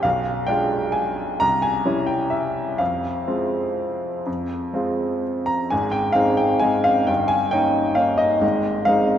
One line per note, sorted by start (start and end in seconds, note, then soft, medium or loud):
0.03 0.48 B1 soft
0.03 0.48 F5 medium
0.47 1.36 G#3 soft
0.47 1.36 D4 soft
0.47 1.37 F4 soft
0.47 0.94 G5 medium
0.92 1.39 G#5 medium
1.40 1.84 C2 soft
1.40 1.62 A#5 medium
1.62 2.08 G#5 medium
1.85 2.76 G3 soft
1.85 2.76 C#4 soft
1.85 2.77 E4 soft
2.07 2.32 G5 medium
2.30 2.79 E5 soft
2.78 3.26 F2 soft
2.78 5.23 F5 medium
3.27 4.23 G#3 soft
3.27 4.22 C4 soft
3.27 4.23 F4 soft
4.26 4.73 F2 soft
4.73 5.67 G#3 soft
4.73 5.68 C4 soft
4.73 5.68 F4 soft
5.46 5.71 A#5 medium
5.70 6.16 G#1 soft
5.70 6.15 G#2 soft
5.70 5.94 G#5 medium
5.92 6.16 G5 medium
6.12 6.58 G#3 soft
6.12 6.59 C4 soft
6.12 6.58 D#4 soft
6.12 6.38 F5 medium
6.37 6.62 G5 medium
6.59 7.04 G#3 soft
6.59 7.04 C4 soft
6.59 7.04 D#4 soft
6.59 6.85 G#5 medium
6.84 7.07 F5 medium
7.07 7.51 G1 soft
7.07 7.50 G2 soft
7.07 7.29 G5 medium
7.28 7.51 G#5 medium
7.51 7.94 A#3 soft
7.51 7.94 C#4 soft
7.51 7.94 D#4 soft
7.51 7.97 G5 medium
7.95 8.38 A#3 soft
7.95 8.38 C#4 soft
7.95 8.39 D#4 soft
7.95 8.19 F5 medium
8.18 8.86 D#5 medium
8.41 8.85 G#1 soft
8.41 8.86 G#2 soft
8.85 9.18 G#3 soft
8.85 9.18 C4 soft
8.85 9.18 D#4 soft
8.85 9.18 F5 medium